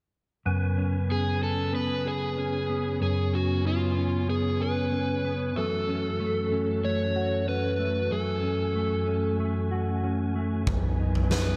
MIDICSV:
0, 0, Header, 1, 5, 480
1, 0, Start_track
1, 0, Tempo, 638298
1, 344, Time_signature, 4, 2, 24, 8
1, 8697, End_track
2, 0, Start_track
2, 0, Title_t, "Electric slide guitar"
2, 0, Program_c, 0, 29
2, 839, Note_on_c, 0, 68, 71
2, 1074, Note_off_c, 0, 68, 0
2, 1077, Note_on_c, 0, 69, 73
2, 1315, Note_off_c, 0, 69, 0
2, 1318, Note_on_c, 0, 71, 77
2, 1558, Note_off_c, 0, 71, 0
2, 1561, Note_on_c, 0, 68, 73
2, 2266, Note_off_c, 0, 68, 0
2, 2275, Note_on_c, 0, 68, 76
2, 2517, Note_off_c, 0, 68, 0
2, 2519, Note_on_c, 0, 66, 67
2, 2758, Note_off_c, 0, 66, 0
2, 2761, Note_on_c, 0, 65, 74
2, 3230, Note_off_c, 0, 65, 0
2, 3233, Note_on_c, 0, 68, 76
2, 3472, Note_on_c, 0, 71, 81
2, 3476, Note_off_c, 0, 68, 0
2, 4192, Note_on_c, 0, 69, 91
2, 4210, Note_off_c, 0, 71, 0
2, 5148, Note_on_c, 0, 73, 85
2, 5177, Note_off_c, 0, 69, 0
2, 5626, Note_off_c, 0, 73, 0
2, 5629, Note_on_c, 0, 71, 78
2, 6108, Note_on_c, 0, 69, 77
2, 6121, Note_off_c, 0, 71, 0
2, 7036, Note_off_c, 0, 69, 0
2, 8514, Note_on_c, 0, 71, 77
2, 8697, Note_off_c, 0, 71, 0
2, 8697, End_track
3, 0, Start_track
3, 0, Title_t, "Tonewheel organ"
3, 0, Program_c, 1, 16
3, 346, Note_on_c, 1, 42, 52
3, 346, Note_on_c, 1, 71, 57
3, 346, Note_on_c, 1, 80, 47
3, 347, Note_on_c, 1, 59, 47
3, 348, Note_on_c, 1, 61, 49
3, 351, Note_on_c, 1, 49, 50
3, 2246, Note_off_c, 1, 71, 0
3, 2255, Note_on_c, 1, 73, 58
3, 4155, Note_off_c, 1, 80, 0
3, 4156, Note_off_c, 1, 59, 0
3, 4156, Note_off_c, 1, 61, 0
3, 4158, Note_off_c, 1, 49, 0
3, 4161, Note_off_c, 1, 73, 0
3, 4180, Note_on_c, 1, 52, 49
3, 4181, Note_on_c, 1, 61, 53
3, 4182, Note_on_c, 1, 57, 51
3, 4182, Note_on_c, 1, 66, 51
3, 4184, Note_on_c, 1, 69, 58
3, 6085, Note_off_c, 1, 69, 0
3, 6109, Note_on_c, 1, 80, 60
3, 7992, Note_off_c, 1, 52, 0
3, 7993, Note_off_c, 1, 57, 0
3, 7993, Note_off_c, 1, 61, 0
3, 7993, Note_off_c, 1, 66, 0
3, 8031, Note_on_c, 1, 71, 63
3, 8033, Note_on_c, 1, 59, 50
3, 8035, Note_on_c, 1, 63, 50
3, 8036, Note_on_c, 1, 52, 48
3, 8697, Note_off_c, 1, 42, 0
3, 8697, Note_off_c, 1, 52, 0
3, 8697, Note_off_c, 1, 59, 0
3, 8697, Note_off_c, 1, 63, 0
3, 8697, Note_off_c, 1, 71, 0
3, 8697, Note_off_c, 1, 80, 0
3, 8697, End_track
4, 0, Start_track
4, 0, Title_t, "Clean electric guitar"
4, 0, Program_c, 2, 27
4, 342, Note_on_c, 2, 42, 66
4, 584, Note_on_c, 2, 61, 50
4, 821, Note_on_c, 2, 59, 46
4, 1059, Note_off_c, 2, 61, 0
4, 1062, Note_on_c, 2, 61, 47
4, 1292, Note_off_c, 2, 59, 0
4, 1301, Note_on_c, 2, 59, 50
4, 1543, Note_on_c, 2, 68, 52
4, 1782, Note_off_c, 2, 61, 0
4, 1785, Note_on_c, 2, 61, 52
4, 2016, Note_off_c, 2, 59, 0
4, 2025, Note_on_c, 2, 59, 52
4, 2255, Note_off_c, 2, 42, 0
4, 2264, Note_on_c, 2, 42, 64
4, 2501, Note_off_c, 2, 61, 0
4, 2504, Note_on_c, 2, 61, 51
4, 2737, Note_off_c, 2, 59, 0
4, 2746, Note_on_c, 2, 59, 50
4, 2981, Note_off_c, 2, 61, 0
4, 2984, Note_on_c, 2, 61, 48
4, 3212, Note_off_c, 2, 59, 0
4, 3221, Note_on_c, 2, 59, 49
4, 3453, Note_off_c, 2, 68, 0
4, 3462, Note_on_c, 2, 68, 55
4, 3698, Note_off_c, 2, 61, 0
4, 3701, Note_on_c, 2, 61, 52
4, 3935, Note_off_c, 2, 59, 0
4, 3944, Note_on_c, 2, 59, 49
4, 4176, Note_off_c, 2, 42, 0
4, 4185, Note_on_c, 2, 42, 63
4, 4231, Note_off_c, 2, 68, 0
4, 4232, Note_off_c, 2, 59, 0
4, 4422, Note_off_c, 2, 61, 0
4, 4425, Note_on_c, 2, 61, 49
4, 4663, Note_on_c, 2, 57, 53
4, 4895, Note_off_c, 2, 61, 0
4, 4904, Note_on_c, 2, 61, 49
4, 5134, Note_off_c, 2, 57, 0
4, 5143, Note_on_c, 2, 57, 54
4, 5383, Note_on_c, 2, 66, 54
4, 5615, Note_off_c, 2, 61, 0
4, 5624, Note_on_c, 2, 61, 50
4, 5852, Note_off_c, 2, 57, 0
4, 5861, Note_on_c, 2, 57, 49
4, 6092, Note_off_c, 2, 42, 0
4, 6101, Note_on_c, 2, 42, 68
4, 6333, Note_off_c, 2, 61, 0
4, 6342, Note_on_c, 2, 61, 46
4, 6574, Note_off_c, 2, 57, 0
4, 6583, Note_on_c, 2, 57, 48
4, 6814, Note_off_c, 2, 61, 0
4, 6823, Note_on_c, 2, 61, 46
4, 7056, Note_off_c, 2, 57, 0
4, 7065, Note_on_c, 2, 57, 52
4, 7294, Note_off_c, 2, 66, 0
4, 7303, Note_on_c, 2, 66, 51
4, 7535, Note_off_c, 2, 61, 0
4, 7544, Note_on_c, 2, 61, 50
4, 7777, Note_off_c, 2, 57, 0
4, 7786, Note_on_c, 2, 57, 45
4, 8017, Note_off_c, 2, 42, 0
4, 8026, Note_on_c, 2, 42, 65
4, 8072, Note_off_c, 2, 61, 0
4, 8072, Note_off_c, 2, 66, 0
4, 8073, Note_off_c, 2, 57, 0
4, 8266, Note_on_c, 2, 63, 48
4, 8507, Note_on_c, 2, 59, 47
4, 8697, Note_off_c, 2, 42, 0
4, 8697, Note_off_c, 2, 59, 0
4, 8697, Note_off_c, 2, 63, 0
4, 8697, End_track
5, 0, Start_track
5, 0, Title_t, "Drums"
5, 8025, Note_on_c, 9, 36, 91
5, 8025, Note_on_c, 9, 43, 90
5, 8100, Note_off_c, 9, 36, 0
5, 8100, Note_off_c, 9, 43, 0
5, 8387, Note_on_c, 9, 43, 57
5, 8462, Note_off_c, 9, 43, 0
5, 8505, Note_on_c, 9, 38, 70
5, 8580, Note_off_c, 9, 38, 0
5, 8697, End_track
0, 0, End_of_file